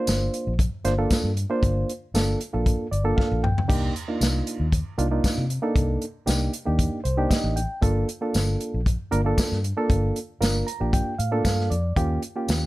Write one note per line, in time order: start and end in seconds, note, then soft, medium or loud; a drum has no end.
0.00 0.52 A#3 medium
0.00 0.52 D4 medium
0.00 0.52 F4 medium
0.00 0.53 C5 medium
0.07 0.27 G1 medium
0.07 snare medium
0.07 closed hi-hat medium
0.07 tambourine loud
0.34 closed hi-hat medium
0.47 0.67 A#1 medium
0.59 kick medium
0.59 closed hi-hat medium
0.85 1.05 G1 medium
0.85 0.93 A#3 medium
0.85 0.93 D4 medium
0.85 0.93 F4 medium
0.85 0.93 C5 loud
0.85 snare soft
0.85 closed hi-hat medium
0.98 1.31 A#3 medium
0.98 1.31 D4 medium
0.98 1.31 F4 medium
0.98 1.31 A4 medium
1.11 kick medium
1.11 snare loud
1.11 closed hi-hat medium
1.11 tambourine loud
1.24 1.44 G2 medium
1.37 closed hi-hat medium
1.50 1.91 A#3 medium
1.50 1.91 D4 medium
1.50 1.91 F4 medium
1.50 1.91 C5 loud
1.63 1.83 G1 medium
1.63 kick loud
1.63 closed hi-hat medium
1.89 closed hi-hat medium
2.14 2.34 G1 medium
2.14 2.39 A#3 medium
2.14 2.39 D4 medium
2.14 2.39 F4 medium
2.14 2.39 A4 medium
2.14 snare medium
2.14 closed hi-hat medium
2.14 tambourine medium
2.41 closed hi-hat medium
2.53 2.74 A#1 medium
2.53 2.86 A#3 medium
2.53 2.86 D4 medium
2.53 2.86 F4 medium
2.53 2.86 A4 medium
2.66 kick medium
2.66 closed hi-hat medium
2.91 3.12 G1 medium
2.91 3.15 D5 medium
2.91 closed hi-hat medium
3.04 3.45 A#3 medium
3.04 3.46 D4 medium
3.04 3.46 F4 medium
3.04 3.46 A4 loud
3.17 3.41 F5 medium
3.17 kick medium
3.17 snare medium
3.32 3.51 A#1 loud
3.43 3.67 G5 medium
3.43 mid tom medium
3.58 floor tom medium
3.68 3.89 C2 medium
3.68 3.93 A#3 medium
3.68 3.93 D4 medium
3.68 3.94 D#4 medium
3.68 3.94 G4 medium
3.68 kick loud
3.68 closed hi-hat medium
3.68 crash medium
3.96 closed hi-hat medium
4.08 4.66 A#3 medium
4.08 4.66 D4 medium
4.08 4.66 D#4 medium
4.08 4.66 F4 medium
4.21 4.41 C2 medium
4.21 snare medium
4.21 closed hi-hat medium
4.21 tambourine loud
4.47 closed hi-hat medium
4.60 4.80 D#2 medium
4.72 kick medium
4.72 closed hi-hat medium
4.98 5.18 C2 medium
4.98 5.07 A#3 medium
4.98 5.07 D4 medium
4.98 5.07 D#4 medium
4.98 5.07 F4 loud
4.98 closed hi-hat medium
5.11 5.44 A#3 medium
5.11 5.44 D4 medium
5.11 5.44 D#4 medium
5.11 5.44 F4 medium
5.24 kick medium
5.24 snare loud
5.24 closed hi-hat medium
5.24 tambourine loud
5.38 5.58 C3 medium
5.50 closed hi-hat medium
5.62 6.04 A#3 medium
5.62 6.04 D4 medium
5.62 6.04 D#4 medium
5.62 6.04 A4 medium
5.76 5.96 C2 medium
5.76 kick loud
5.76 closed hi-hat medium
6.01 closed hi-hat medium
6.26 6.47 C2 medium
6.26 6.52 A#3 medium
6.26 6.52 D4 medium
6.26 6.52 D#4 medium
6.26 6.52 G4 medium
6.26 snare medium
6.26 closed hi-hat medium
6.26 tambourine medium
6.53 closed hi-hat medium
6.65 6.87 D#2 medium
6.65 6.99 A#3 medium
6.65 6.99 D4 medium
6.65 6.99 D#4 medium
6.65 6.99 G4 medium
6.79 kick medium
6.79 closed hi-hat medium
7.04 7.25 C2 medium
7.04 7.28 C5 medium
7.04 closed hi-hat medium
7.17 7.59 A#3 medium
7.17 7.59 D4 medium
7.17 7.59 D#4 medium
7.17 7.59 G4 medium
7.29 7.54 D#5 medium
7.29 kick medium
7.29 snare loud
7.29 closed hi-hat medium
7.29 tambourine loud
7.44 7.64 A1 medium
7.56 7.80 G5 medium
7.56 closed hi-hat medium
7.82 8.03 G1 medium
7.82 8.07 A#3 medium
7.82 8.07 D4 medium
7.82 8.07 F4 medium
7.82 8.07 A4 loud
7.82 kick loud
7.82 closed hi-hat medium
8.09 closed hi-hat medium
8.21 8.79 A#3 medium
8.21 8.80 D4 medium
8.21 8.80 F4 medium
8.21 8.80 A4 medium
8.34 8.55 G1 medium
8.34 snare medium
8.34 closed hi-hat medium
8.34 tambourine loud
8.60 closed hi-hat medium
8.74 8.94 A#1 medium
8.86 kick medium
8.86 closed hi-hat medium
9.11 9.32 G1 medium
9.11 9.20 A#3 medium
9.11 9.20 D4 medium
9.11 9.20 F4 medium
9.11 9.20 A#4 loud
9.11 closed hi-hat medium
9.25 9.58 A#3 medium
9.25 9.58 D4 medium
9.25 9.58 F4 medium
9.25 9.59 A4 medium
9.38 kick medium
9.38 snare loud
9.38 closed hi-hat medium
9.38 tambourine loud
9.52 9.72 G2 medium
9.52 snare soft
9.64 closed hi-hat medium
9.77 10.18 A#3 medium
9.77 10.18 D4 medium
9.77 10.18 F4 medium
9.77 10.18 A4 loud
9.90 10.10 G1 medium
9.90 kick loud
9.90 closed hi-hat medium
10.16 closed hi-hat medium
10.40 10.61 G1 medium
10.40 10.66 A#3 medium
10.40 10.66 D4 medium
10.40 10.66 F4 medium
10.40 10.66 A#4 medium
10.40 snare medium
10.40 closed hi-hat medium
10.40 tambourine medium
10.67 10.91 A#5 medium
10.67 closed hi-hat medium
10.80 11.01 A#1 medium
10.80 11.13 A#3 medium
10.80 11.13 D4 medium
10.80 11.14 F4 medium
10.80 11.14 G4 medium
10.93 11.17 G5 medium
10.93 kick medium
10.93 closed hi-hat medium
11.19 11.42 A2 medium
11.19 11.43 F5 medium
11.19 closed hi-hat medium
11.32 11.73 A#3 medium
11.32 11.73 D4 medium
11.32 11.73 F4 medium
11.32 11.73 A4 medium
11.45 11.68 G2 medium
11.45 11.69 F5 medium
11.45 kick medium
11.45 snare loud
11.45 closed hi-hat medium
11.45 tambourine loud
11.60 snare soft
11.70 11.94 F2 medium
11.70 11.94 D5 medium
11.70 closed hi-hat medium
11.96 12.17 D#2 medium
11.96 12.21 A#3 medium
11.96 12.21 C#4 medium
11.96 12.21 F4 medium
11.96 12.21 G4 medium
11.96 kick loud
11.96 closed hi-hat medium
12.22 closed hi-hat medium
12.36 12.66 A#3 medium
12.36 12.66 C#4 medium
12.36 12.66 F4 medium
12.36 12.66 G4 medium
12.48 12.66 D#2 medium
12.48 snare loud
12.48 closed hi-hat medium
12.48 tambourine medium